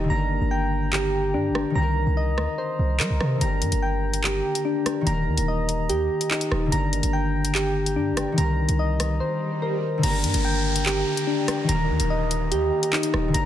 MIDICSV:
0, 0, Header, 1, 7, 480
1, 0, Start_track
1, 0, Key_signature, -2, "minor"
1, 0, Tempo, 413793
1, 118, Time_signature, 4, 2, 24, 8
1, 15607, End_track
2, 0, Start_track
2, 0, Title_t, "Synth keys"
2, 0, Program_c, 0, 88
2, 0, Note_on_c, 0, 63, 93
2, 0, Note_on_c, 0, 67, 95
2, 0, Note_on_c, 0, 75, 93
2, 116, Note_on_c, 0, 82, 111
2, 117, Note_off_c, 0, 63, 0
2, 117, Note_off_c, 0, 67, 0
2, 118, Note_off_c, 0, 75, 0
2, 593, Note_on_c, 0, 79, 92
2, 1076, Note_on_c, 0, 67, 94
2, 1555, Note_on_c, 0, 62, 93
2, 2021, Note_off_c, 0, 82, 0
2, 2035, Note_off_c, 0, 79, 0
2, 2035, Note_on_c, 0, 82, 107
2, 2037, Note_off_c, 0, 62, 0
2, 2037, Note_off_c, 0, 67, 0
2, 2517, Note_on_c, 0, 75, 91
2, 2995, Note_on_c, 0, 72, 91
2, 3479, Note_on_c, 0, 70, 86
2, 3946, Note_off_c, 0, 82, 0
2, 3957, Note_off_c, 0, 72, 0
2, 3958, Note_off_c, 0, 70, 0
2, 3958, Note_off_c, 0, 75, 0
2, 3960, Note_on_c, 0, 82, 101
2, 4437, Note_on_c, 0, 79, 89
2, 4916, Note_on_c, 0, 67, 92
2, 5393, Note_on_c, 0, 62, 87
2, 5863, Note_off_c, 0, 82, 0
2, 5876, Note_off_c, 0, 62, 0
2, 5877, Note_off_c, 0, 67, 0
2, 5877, Note_off_c, 0, 79, 0
2, 5877, Note_on_c, 0, 82, 111
2, 6359, Note_on_c, 0, 75, 89
2, 6837, Note_on_c, 0, 67, 98
2, 7316, Note_on_c, 0, 63, 91
2, 7782, Note_off_c, 0, 82, 0
2, 7796, Note_on_c, 0, 82, 109
2, 7797, Note_off_c, 0, 63, 0
2, 7798, Note_off_c, 0, 67, 0
2, 7799, Note_off_c, 0, 75, 0
2, 8273, Note_on_c, 0, 79, 96
2, 8756, Note_on_c, 0, 67, 97
2, 9236, Note_on_c, 0, 62, 92
2, 9705, Note_off_c, 0, 82, 0
2, 9716, Note_off_c, 0, 79, 0
2, 9717, Note_off_c, 0, 62, 0
2, 9717, Note_off_c, 0, 67, 0
2, 9719, Note_on_c, 0, 82, 103
2, 10199, Note_on_c, 0, 75, 92
2, 10676, Note_on_c, 0, 72, 90
2, 11161, Note_on_c, 0, 70, 87
2, 11627, Note_off_c, 0, 82, 0
2, 11637, Note_off_c, 0, 72, 0
2, 11639, Note_off_c, 0, 70, 0
2, 11639, Note_off_c, 0, 75, 0
2, 11641, Note_on_c, 0, 82, 108
2, 12118, Note_on_c, 0, 79, 93
2, 12598, Note_on_c, 0, 67, 95
2, 13075, Note_on_c, 0, 62, 90
2, 13543, Note_off_c, 0, 82, 0
2, 13556, Note_off_c, 0, 62, 0
2, 13557, Note_on_c, 0, 82, 110
2, 13558, Note_off_c, 0, 67, 0
2, 13558, Note_off_c, 0, 79, 0
2, 14039, Note_on_c, 0, 75, 91
2, 14518, Note_on_c, 0, 67, 99
2, 14997, Note_on_c, 0, 63, 98
2, 15462, Note_off_c, 0, 82, 0
2, 15476, Note_on_c, 0, 82, 111
2, 15477, Note_off_c, 0, 63, 0
2, 15478, Note_off_c, 0, 67, 0
2, 15478, Note_off_c, 0, 75, 0
2, 15607, Note_off_c, 0, 82, 0
2, 15607, End_track
3, 0, Start_track
3, 0, Title_t, "Harp"
3, 0, Program_c, 1, 46
3, 0, Note_on_c, 1, 51, 76
3, 0, Note_on_c, 1, 67, 77
3, 0, Note_on_c, 1, 70, 91
3, 44, Note_on_c, 1, 50, 78
3, 88, Note_on_c, 1, 58, 63
3, 128, Note_off_c, 1, 67, 0
3, 133, Note_on_c, 1, 67, 67
3, 172, Note_off_c, 1, 70, 0
3, 176, Note_off_c, 1, 51, 0
3, 177, Note_on_c, 1, 70, 80
3, 1975, Note_on_c, 1, 51, 75
3, 2020, Note_on_c, 1, 60, 70
3, 2059, Note_off_c, 1, 67, 0
3, 2064, Note_on_c, 1, 67, 68
3, 2096, Note_off_c, 1, 50, 0
3, 2103, Note_off_c, 1, 70, 0
3, 2108, Note_on_c, 1, 70, 85
3, 3479, Note_on_c, 1, 72, 73
3, 3818, Note_off_c, 1, 58, 0
3, 3891, Note_on_c, 1, 50, 69
3, 3937, Note_on_c, 1, 58, 66
3, 3976, Note_off_c, 1, 67, 0
3, 3981, Note_on_c, 1, 67, 73
3, 4016, Note_off_c, 1, 51, 0
3, 4021, Note_off_c, 1, 70, 0
3, 4026, Note_on_c, 1, 70, 82
3, 5500, Note_off_c, 1, 60, 0
3, 5775, Note_off_c, 1, 72, 0
3, 5813, Note_on_c, 1, 51, 75
3, 5853, Note_off_c, 1, 58, 0
3, 5858, Note_on_c, 1, 58, 69
3, 5898, Note_off_c, 1, 67, 0
3, 5902, Note_on_c, 1, 67, 75
3, 5936, Note_off_c, 1, 50, 0
3, 5942, Note_off_c, 1, 70, 0
3, 5946, Note_on_c, 1, 70, 89
3, 7726, Note_on_c, 1, 50, 76
3, 7766, Note_off_c, 1, 58, 0
3, 7770, Note_on_c, 1, 58, 64
3, 7810, Note_off_c, 1, 67, 0
3, 7815, Note_on_c, 1, 67, 69
3, 7854, Note_off_c, 1, 70, 0
3, 7856, Note_off_c, 1, 51, 0
3, 7859, Note_on_c, 1, 70, 84
3, 9654, Note_on_c, 1, 51, 75
3, 9698, Note_on_c, 1, 60, 70
3, 9738, Note_off_c, 1, 67, 0
3, 9743, Note_on_c, 1, 67, 70
3, 9776, Note_off_c, 1, 50, 0
3, 9783, Note_off_c, 1, 70, 0
3, 9788, Note_on_c, 1, 70, 80
3, 11158, Note_on_c, 1, 72, 75
3, 11500, Note_off_c, 1, 58, 0
3, 11572, Note_on_c, 1, 50, 71
3, 11617, Note_on_c, 1, 58, 72
3, 11657, Note_off_c, 1, 67, 0
3, 11661, Note_on_c, 1, 67, 75
3, 11696, Note_off_c, 1, 51, 0
3, 11701, Note_off_c, 1, 70, 0
3, 11705, Note_on_c, 1, 70, 86
3, 13178, Note_off_c, 1, 60, 0
3, 13454, Note_off_c, 1, 72, 0
3, 13495, Note_on_c, 1, 51, 78
3, 13534, Note_off_c, 1, 58, 0
3, 13539, Note_on_c, 1, 58, 74
3, 13579, Note_off_c, 1, 67, 0
3, 13584, Note_on_c, 1, 67, 77
3, 13616, Note_off_c, 1, 50, 0
3, 13623, Note_off_c, 1, 70, 0
3, 13628, Note_on_c, 1, 70, 93
3, 15405, Note_on_c, 1, 50, 78
3, 15445, Note_off_c, 1, 58, 0
3, 15450, Note_on_c, 1, 58, 66
3, 15490, Note_off_c, 1, 67, 0
3, 15494, Note_on_c, 1, 67, 68
3, 15534, Note_off_c, 1, 70, 0
3, 15536, Note_off_c, 1, 51, 0
3, 15538, Note_on_c, 1, 70, 82
3, 15607, Note_off_c, 1, 50, 0
3, 15607, Note_off_c, 1, 58, 0
3, 15607, Note_off_c, 1, 67, 0
3, 15607, Note_off_c, 1, 70, 0
3, 15607, End_track
4, 0, Start_track
4, 0, Title_t, "808-style bass"
4, 0, Program_c, 2, 38
4, 117, Note_on_c, 2, 31, 109
4, 463, Note_off_c, 2, 31, 0
4, 478, Note_on_c, 2, 31, 108
4, 1558, Note_on_c, 2, 43, 100
4, 1575, Note_off_c, 2, 31, 0
4, 1738, Note_on_c, 2, 31, 96
4, 1755, Note_off_c, 2, 43, 0
4, 1909, Note_off_c, 2, 31, 0
4, 2036, Note_on_c, 2, 36, 110
4, 2383, Note_off_c, 2, 36, 0
4, 2398, Note_on_c, 2, 36, 100
4, 2757, Note_on_c, 2, 38, 97
4, 2775, Note_off_c, 2, 36, 0
4, 2872, Note_off_c, 2, 38, 0
4, 3238, Note_on_c, 2, 36, 108
4, 3478, Note_on_c, 2, 55, 99
4, 3496, Note_off_c, 2, 36, 0
4, 3592, Note_off_c, 2, 55, 0
4, 3599, Note_on_c, 2, 36, 95
4, 3714, Note_off_c, 2, 36, 0
4, 3718, Note_on_c, 2, 48, 112
4, 3949, Note_off_c, 2, 48, 0
4, 3958, Note_on_c, 2, 31, 106
4, 4198, Note_on_c, 2, 43, 100
4, 4216, Note_off_c, 2, 31, 0
4, 4312, Note_off_c, 2, 43, 0
4, 4318, Note_on_c, 2, 31, 99
4, 5124, Note_off_c, 2, 31, 0
4, 5878, Note_on_c, 2, 27, 107
4, 6117, Note_on_c, 2, 39, 100
4, 6134, Note_off_c, 2, 27, 0
4, 6231, Note_off_c, 2, 39, 0
4, 6237, Note_on_c, 2, 27, 104
4, 6838, Note_on_c, 2, 39, 100
4, 6855, Note_off_c, 2, 27, 0
4, 7066, Note_off_c, 2, 39, 0
4, 7557, Note_on_c, 2, 27, 108
4, 7788, Note_off_c, 2, 27, 0
4, 7799, Note_on_c, 2, 31, 113
4, 8144, Note_off_c, 2, 31, 0
4, 8158, Note_on_c, 2, 31, 104
4, 9238, Note_on_c, 2, 43, 99
4, 9255, Note_off_c, 2, 31, 0
4, 9419, Note_on_c, 2, 31, 98
4, 9436, Note_off_c, 2, 43, 0
4, 9589, Note_off_c, 2, 31, 0
4, 9719, Note_on_c, 2, 36, 113
4, 10064, Note_off_c, 2, 36, 0
4, 10079, Note_on_c, 2, 36, 108
4, 10678, Note_off_c, 2, 36, 0
4, 11638, Note_on_c, 2, 31, 111
4, 11878, Note_on_c, 2, 43, 99
4, 11895, Note_off_c, 2, 31, 0
4, 11992, Note_off_c, 2, 43, 0
4, 11997, Note_on_c, 2, 31, 100
4, 12804, Note_off_c, 2, 31, 0
4, 13559, Note_on_c, 2, 27, 105
4, 13799, Note_on_c, 2, 39, 106
4, 13816, Note_off_c, 2, 27, 0
4, 13912, Note_off_c, 2, 39, 0
4, 13919, Note_on_c, 2, 27, 109
4, 14519, Note_on_c, 2, 39, 97
4, 14537, Note_off_c, 2, 27, 0
4, 14747, Note_off_c, 2, 39, 0
4, 15239, Note_on_c, 2, 27, 114
4, 15469, Note_off_c, 2, 27, 0
4, 15479, Note_on_c, 2, 31, 113
4, 15607, Note_off_c, 2, 31, 0
4, 15607, End_track
5, 0, Start_track
5, 0, Title_t, "Downlifter"
5, 0, Program_c, 3, 103
5, 11639, Note_on_c, 3, 60, 84
5, 15478, Note_off_c, 3, 60, 0
5, 15607, End_track
6, 0, Start_track
6, 0, Title_t, "Swell"
6, 0, Program_c, 4, 103
6, 9719, Note_on_c, 4, 60, 82
6, 11638, Note_off_c, 4, 60, 0
6, 15607, End_track
7, 0, Start_track
7, 0, Title_t, "Drums"
7, 1077, Note_on_c, 9, 39, 110
7, 1193, Note_off_c, 9, 39, 0
7, 1799, Note_on_c, 9, 37, 97
7, 1915, Note_off_c, 9, 37, 0
7, 2757, Note_on_c, 9, 37, 96
7, 2873, Note_off_c, 9, 37, 0
7, 3477, Note_on_c, 9, 39, 113
7, 3593, Note_off_c, 9, 39, 0
7, 3718, Note_on_c, 9, 37, 96
7, 3834, Note_off_c, 9, 37, 0
7, 3957, Note_on_c, 9, 42, 81
7, 4073, Note_off_c, 9, 42, 0
7, 4195, Note_on_c, 9, 42, 79
7, 4311, Note_off_c, 9, 42, 0
7, 4315, Note_on_c, 9, 42, 79
7, 4431, Note_off_c, 9, 42, 0
7, 4797, Note_on_c, 9, 42, 79
7, 4913, Note_off_c, 9, 42, 0
7, 4915, Note_on_c, 9, 39, 116
7, 5031, Note_off_c, 9, 39, 0
7, 5281, Note_on_c, 9, 42, 74
7, 5397, Note_off_c, 9, 42, 0
7, 5637, Note_on_c, 9, 42, 72
7, 5638, Note_on_c, 9, 37, 99
7, 5753, Note_off_c, 9, 42, 0
7, 5754, Note_off_c, 9, 37, 0
7, 5878, Note_on_c, 9, 42, 85
7, 5994, Note_off_c, 9, 42, 0
7, 6235, Note_on_c, 9, 42, 80
7, 6351, Note_off_c, 9, 42, 0
7, 6597, Note_on_c, 9, 42, 83
7, 6713, Note_off_c, 9, 42, 0
7, 6838, Note_on_c, 9, 42, 67
7, 6954, Note_off_c, 9, 42, 0
7, 7202, Note_on_c, 9, 42, 77
7, 7318, Note_off_c, 9, 42, 0
7, 7318, Note_on_c, 9, 39, 112
7, 7434, Note_off_c, 9, 39, 0
7, 7437, Note_on_c, 9, 42, 82
7, 7553, Note_off_c, 9, 42, 0
7, 7558, Note_on_c, 9, 37, 98
7, 7674, Note_off_c, 9, 37, 0
7, 7799, Note_on_c, 9, 42, 81
7, 7915, Note_off_c, 9, 42, 0
7, 8038, Note_on_c, 9, 42, 80
7, 8154, Note_off_c, 9, 42, 0
7, 8156, Note_on_c, 9, 42, 77
7, 8272, Note_off_c, 9, 42, 0
7, 8637, Note_on_c, 9, 42, 79
7, 8753, Note_off_c, 9, 42, 0
7, 8757, Note_on_c, 9, 39, 120
7, 8873, Note_off_c, 9, 39, 0
7, 9122, Note_on_c, 9, 42, 72
7, 9238, Note_off_c, 9, 42, 0
7, 9478, Note_on_c, 9, 37, 103
7, 9478, Note_on_c, 9, 42, 74
7, 9594, Note_off_c, 9, 37, 0
7, 9594, Note_off_c, 9, 42, 0
7, 9719, Note_on_c, 9, 42, 84
7, 9835, Note_off_c, 9, 42, 0
7, 10076, Note_on_c, 9, 42, 78
7, 10192, Note_off_c, 9, 42, 0
7, 10438, Note_on_c, 9, 42, 83
7, 10439, Note_on_c, 9, 37, 92
7, 10554, Note_off_c, 9, 42, 0
7, 10555, Note_off_c, 9, 37, 0
7, 11639, Note_on_c, 9, 42, 86
7, 11639, Note_on_c, 9, 49, 103
7, 11755, Note_off_c, 9, 42, 0
7, 11755, Note_off_c, 9, 49, 0
7, 11877, Note_on_c, 9, 42, 85
7, 11993, Note_off_c, 9, 42, 0
7, 11996, Note_on_c, 9, 42, 81
7, 12112, Note_off_c, 9, 42, 0
7, 12478, Note_on_c, 9, 42, 79
7, 12594, Note_off_c, 9, 42, 0
7, 12596, Note_on_c, 9, 39, 115
7, 12712, Note_off_c, 9, 39, 0
7, 12961, Note_on_c, 9, 42, 75
7, 13077, Note_off_c, 9, 42, 0
7, 13318, Note_on_c, 9, 37, 106
7, 13318, Note_on_c, 9, 42, 75
7, 13434, Note_off_c, 9, 37, 0
7, 13434, Note_off_c, 9, 42, 0
7, 13559, Note_on_c, 9, 42, 88
7, 13675, Note_off_c, 9, 42, 0
7, 13916, Note_on_c, 9, 42, 78
7, 14032, Note_off_c, 9, 42, 0
7, 14278, Note_on_c, 9, 42, 83
7, 14394, Note_off_c, 9, 42, 0
7, 14519, Note_on_c, 9, 42, 68
7, 14635, Note_off_c, 9, 42, 0
7, 14882, Note_on_c, 9, 42, 84
7, 14998, Note_off_c, 9, 42, 0
7, 14998, Note_on_c, 9, 39, 114
7, 15114, Note_off_c, 9, 39, 0
7, 15118, Note_on_c, 9, 42, 83
7, 15234, Note_off_c, 9, 42, 0
7, 15239, Note_on_c, 9, 37, 101
7, 15355, Note_off_c, 9, 37, 0
7, 15479, Note_on_c, 9, 42, 85
7, 15595, Note_off_c, 9, 42, 0
7, 15607, End_track
0, 0, End_of_file